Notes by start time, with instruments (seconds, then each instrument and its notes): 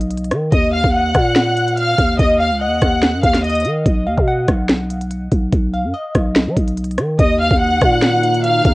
Already playing: 808-style bass B1, synth pluck D#5
0.01 closed hi-hat
0.11 closed hi-hat
0.18 closed hi-hat
0.24 closed hi-hat
0.31 808-style bass D#3, cross-stick, closed hi-hat
0.52 808-style bass D#2, violin section D#5 D#6, kick, closed hi-hat
0.73 violin section F5 F6, synth pluck F5
0.84 808-style bass D#2, kick
0.94 violin section F#5 F#6, synth pluck F#5
1.15 808-style bass A#2, kick, cross-stick, closed hi-hat
1.36 snare
1.57 closed hi-hat
1.68 closed hi-hat
1.77 violin section F5 F6, closed hi-hat
1.98 808-style bass D#2, kick, closed hi-hat
2.19 808-style bass D#2, violin section D#5 D#6, kick, closed hi-hat
2.40 violin section F5 F6, synth pluck F5
2.51 808-style bass C#2
2.60 synth pluck D#5, violin section F#5 F#6
2.66 808-style bass D#2
2.81 808-style bass D#2, kick, cross-stick, closed hi-hat
3.02 snare
3.13 808-style bass F#2
3.23 808-style bass D#2, violin section F5 F6, kick, closed hi-hat
3.34 snare, closed hi-hat
3.44 violin section D#5 D#6, closed hi-hat
3.50 closed hi-hat
3.55 closed hi-hat
3.60 closed hi-hat
3.65 808-style bass D#3, closed hi-hat
3.86 808-style bass B1, kick, closed hi-hat
4.07 808-style bass D#2, synth pluck F5
4.17 808-style bass B2, kick
4.28 synth pluck F#5
4.48 808-style bass B1, kick, cross-stick, closed hi-hat
4.69 snare
4.90 closed hi-hat
5.01 closed hi-hat
5.10 closed hi-hat
5.31 808-style bass B1, kick, closed hi-hat
5.52 808-style bass B1, kick, closed hi-hat
5.74 synth pluck F5
5.84 808-style bass F#2
5.94 synth pluck D#5
6.15 808-style bass B1, kick, cross-stick, closed hi-hat
6.36 snare
6.47 808-style bass F#3
6.57 808-style bass B1, kick, closed hi-hat
6.68 closed hi-hat
6.77 closed hi-hat
6.84 closed hi-hat
6.91 closed hi-hat
6.98 808-style bass D#3, cross-stick, closed hi-hat
7.19 808-style bass D#2, ambient pad D#3 A#3 D#4 F#4, violin section D#5 D#6, kick, closed hi-hat
7.40 violin section F5 F6
7.51 808-style bass D#2, kick
7.61 violin section F#5 F#6
7.81 808-style bass A#2, kick, cross-stick, closed hi-hat
8.02 snare
8.23 closed hi-hat
8.34 closed hi-hat
8.44 violin section F5 F6, closed hi-hat
8.65 808-style bass D#2, kick, closed hi-hat